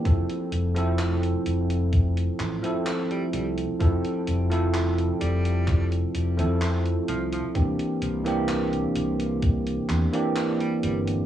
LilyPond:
<<
  \new Staff \with { instrumentName = "Tine electric piano" } { \time 4/4 \key f \major \tempo 4 = 64 <f a c' e' a'>8. <f a c' e' a'>2 <f a c' e' a'>4~ <f a c' e' a'>16 | <f a c' e' a'>8. <f a c' e' a'>2 <f a c' e' a'>4~ <f a c' e' a'>16 | <e bes c' d' g'>8. <e bes c' d' g'>2 <e bes c' d' g'>4~ <e bes c' d' g'>16 | }
  \new Staff \with { instrumentName = "Tenor saxophone" } { \clef bass \time 4/4 \key f \major r2. r16 g16 g16 r16 | r4. g8. r4 r16 f16 f16 | r2. r16 g16 g16 r16 | }
  \new Staff \with { instrumentName = "Fretless electric bass" } { \clef bass \time 4/4 \key f \major f,,16 r16 f,,8. r16 f,,8. r16 a,,16 r8. c,16 r16 | f,,16 r16 f,,8. r16 f,,8. r16 f,,16 f,8 r16 c,16 r16 | c,16 r16 c,8. r16 c,8. r16 e,16 r8. g,,16 r16 | }
  \new DrumStaff \with { instrumentName = "Drums" } \drummode { \time 4/4 <hh bd>16 hh16 hh16 hh16 <hc hh>16 hh16 hh16 hh16 <hh bd>16 hh16 <hc hh>16 hh16 <hc hh>16 hh16 hh16 hh16 | <hh bd>16 hh16 hh16 hh16 <hc hh>16 hh16 hh16 hh16 <hc hh bd>16 hh16 hh16 hh16 <hc hh>16 hh16 hh16 hh16 | <hh bd>16 hh16 hh16 hh16 <hc hh>16 hh16 hh16 hh16 <hh bd>16 hh16 <hc hh>16 hh16 <hc hh>16 hh16 hh16 hh16 | }
>>